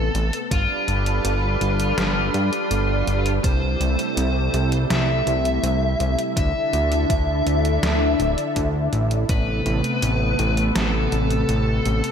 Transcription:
Already playing: A1 C3 A3 B3 A4
0.15 A1, closed hi-hat
0.33 closed hi-hat
0.51 G1 G3 D4 F4 A4 B4, kick, closed hi-hat
0.88 G1, closed hi-hat
1.06 closed hi-hat
1.24 G1, closed hi-hat
1.61 G1, closed hi-hat
1.80 closed hi-hat
1.98 G1, snare, closed hi-hat
2.34 G2, closed hi-hat
2.53 closed hi-hat
2.71 G1, closed hi-hat
3.07 G1, closed hi-hat
3.26 closed hi-hat
3.44 C2 C3 A3 E4 C5, kick, closed hi-hat
3.81 C2, closed hi-hat
3.99 closed hi-hat
4.17 C2, closed hi-hat
4.54 C2, closed hi-hat
4.72 closed hi-hat
4.90 C2 E5, snare, closed hi-hat
5.27 C2, closed hi-hat
5.45 closed hi-hat
5.63 C2, closed hi-hat
6.00 C2, closed hi-hat
6.19 closed hi-hat
6.37 D2 D3 D4 A4 E5, kick, closed hi-hat
6.73 D2, closed hi-hat
6.92 closed hi-hat
7.10 D2, kick, closed hi-hat
7.46 D2, closed hi-hat
7.65 closed hi-hat
7.83 D2, snare, closed hi-hat
8.20 D1, closed hi-hat
8.38 closed hi-hat
8.56 D2, kick, closed hi-hat
8.93 A1, closed hi-hat
9.11 closed hi-hat
9.29 A1 C3 A3 B3 B4, kick, closed hi-hat
9.66 A1, closed hi-hat
9.84 closed hi-hat
10.02 A1, closed hi-hat
10.39 A1, closed hi-hat
10.57 closed hi-hat
10.76 A1 A4, snare, closed hi-hat
11.12 A1, closed hi-hat
11.31 closed hi-hat
11.49 A1, closed hi-hat
11.86 A1, closed hi-hat
12.04 closed hi-hat

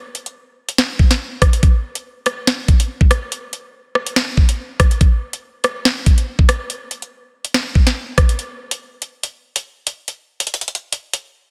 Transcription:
0.15 closed hi-hat
0.26 closed hi-hat
0.69 closed hi-hat
0.78 snare, closed hi-hat
0.99 kick
1.11 snare, closed hi-hat
1.42 kick, cross-stick, closed hi-hat
1.53 closed hi-hat
1.63 kick, closed hi-hat
1.95 closed hi-hat
2.26 cross-stick, closed hi-hat
2.47 snare, closed hi-hat
2.68 kick, closed hi-hat
2.80 closed hi-hat
3.01 kick
3.11 cross-stick, closed hi-hat
3.32 closed hi-hat
3.53 closed hi-hat
3.95 cross-stick
4.07 closed hi-hat
4.16 snare, closed hi-hat
4.37 kick
4.49 closed hi-hat
4.80 kick, cross-stick, closed hi-hat
4.91 closed hi-hat
5.01 kick, closed hi-hat
5.33 closed hi-hat
5.64 cross-stick, closed hi-hat
5.85 snare, closed hi-hat
6.06 kick, closed hi-hat
6.18 closed hi-hat
6.39 kick
6.49 cross-stick, closed hi-hat
6.70 closed hi-hat
6.91 closed hi-hat
7.02 closed hi-hat
7.45 closed hi-hat
7.54 snare, closed hi-hat
7.75 kick
7.87 snare, closed hi-hat
8.18 kick, cross-stick, closed hi-hat
8.29 closed hi-hat
8.39 closed hi-hat
8.71 closed hi-hat
9.02 closed hi-hat
9.23 closed hi-hat
9.56 closed hi-hat
9.87 closed hi-hat
10.08 closed hi-hat
10.40 closed hi-hat
10.47 closed hi-hat
10.54 closed hi-hat
10.61 closed hi-hat
10.68 closed hi-hat
10.75 closed hi-hat
10.93 closed hi-hat
11.13 closed hi-hat

